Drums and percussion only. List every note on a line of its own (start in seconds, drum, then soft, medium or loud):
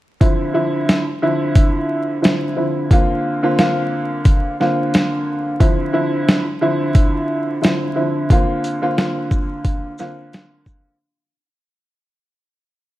0.21 kick loud
0.21 closed hi-hat medium
0.89 snare loud
0.89 closed hi-hat medium
1.55 kick medium
1.55 closed hi-hat medium
2.24 snare loud
2.24 closed hi-hat medium
2.91 kick loud
2.91 closed hi-hat medium
3.59 snare loud
3.59 closed hi-hat medium
4.25 kick loud
4.25 closed hi-hat medium
4.61 snare soft
4.94 snare loud
4.94 closed hi-hat medium
5.60 kick loud
5.60 closed hi-hat medium
6.28 snare loud
6.28 closed hi-hat medium
6.95 kick loud
6.95 closed hi-hat medium
7.64 snare loud
7.64 closed hi-hat medium
8.30 kick loud
8.30 closed hi-hat medium
8.64 closed hi-hat soft
8.64 shaker soft
8.98 snare loud
8.98 closed hi-hat medium
9.31 kick medium
9.31 shaker medium
9.65 kick loud
9.65 closed hi-hat medium
9.98 snare soft
9.98 shaker soft
10.33 snare loud
10.33 closed hi-hat medium
10.66 kick loud
10.66 shaker medium